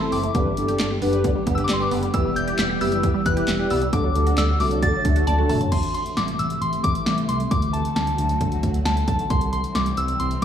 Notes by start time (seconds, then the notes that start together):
Already playing: C3 E3 A3 E4 C6
0.01 C4 E4 A4
0.12 F#1 C4 D6, open hi-hat
0.23 A3, closed hi-hat
0.35 G1 D3 G3 B3 D4 G4 B4, kick, closed hi-hat
0.46 G3
0.57 G1 D4 G4 A4, closed hi-hat
0.68 G4, closed hi-hat
0.80 G1 D5, snare, clap, closed hi-hat
0.91 G4
1.02 F#1 B3 D4 G4 B4, open hi-hat
1.13 G3, closed hi-hat
1.24 D3, kick, closed hi-hat
1.35 G3
1.47 G1 B3 D4 G4 B4, kick, closed hi-hat
1.55 G4 E6, closed hi-hat
1.64 D6
1.69 G1 D5, snare, clap, closed hi-hat
1.73 C6
1.80 D4 G4 B4 D6
1.91 F#1 B3, open hi-hat
2.03 G3, closed hi-hat
2.14 E1 E3 E4 G4 B4 E6, kick, closed hi-hat
2.25 G3
2.36 E1 E4 G4 D5 G6, closed hi-hat
2.47 G4, closed hi-hat
2.59 E1 E5, snare, clap, closed hi-hat
2.70 G4
2.81 F#1 B3 E4 G4 B4 E6, open hi-hat
2.92 G3, closed hi-hat
3.03 E3, kick, closed hi-hat
3.14 G3
3.26 E1 B3 E4 G4 B4 F#6, kick, closed hi-hat
3.37 G4, closed hi-hat
3.48 E1 E5, snare, clap, closed hi-hat
3.59 E4 G4 D5
3.70 C2 B3 E6, open hi-hat
3.82 G3, closed hi-hat
3.93 D2 D3 F#3 A3 D4 F#4 A4 D6, kick, closed hi-hat
4.04 F#3
4.15 D2 D4 F#4 A4, closed hi-hat
4.27 F#4, closed hi-hat
4.38 D2 D5 E6, snare, clap, closed hi-hat
4.49 F#4
4.60 C2 A3 D4 F#4 A4 D6, open hi-hat
4.71 F#3, closed hi-hat
4.82 D3 A6, kick, closed hi-hat
4.94 F#3
5.05 D2 A3 D4 F#4 A4, kick, closed hi-hat
5.16 F#4, closed hi-hat
5.27 D2 D5 A5, closed hi-hat, high tom
5.38 D4 F#4 A4
5.49 G1 A3 A5, mid tom, open hi-hat
5.61 F#3, closed hi-hat, floor tom
5.72 A1 C3 E3 A3 E4 C6, kick, closed hi-hat, crash
5.83 closed hi-hat
5.94 C6, closed hi-hat
6.06 closed hi-hat
6.17 A1 D6, snare, closed hi-hat
6.28 closed hi-hat
6.39 A1 E6, closed hi-hat
6.50 closed hi-hat
6.61 A1 C6, closed hi-hat
6.73 closed hi-hat
6.84 A1 D6, kick, closed hi-hat
6.95 closed hi-hat
7.06 A1, snare, closed hi-hat
7.18 closed hi-hat
7.29 C2 C6, closed hi-hat
7.40 closed hi-hat
7.51 D2 D3 F#3 F#4 D6, kick, closed hi-hat
7.62 closed hi-hat
7.73 A5, closed hi-hat
7.85 closed hi-hat
7.96 D2 A5, snare, closed hi-hat
8.07 closed hi-hat
8.18 D2, closed hi-hat
8.29 closed hi-hat
8.41 D2, kick, closed hi-hat
8.52 closed hi-hat
8.63 D2, kick, closed hi-hat
8.74 closed hi-hat
8.85 D2 A5, snare, closed hi-hat
8.97 closed hi-hat
9.08 B1 A5, kick, closed hi-hat
9.19 closed hi-hat
9.30 C2 E3 G3 C4 G4 C6, kick, closed hi-hat
9.41 closed hi-hat
9.53 C6, closed hi-hat
9.64 closed hi-hat
9.75 C2 D6, snare, closed hi-hat
9.86 closed hi-hat
9.97 C2 E6, closed hi-hat
10.08 closed hi-hat
10.20 C2 C6, closed hi-hat
10.31 closed hi-hat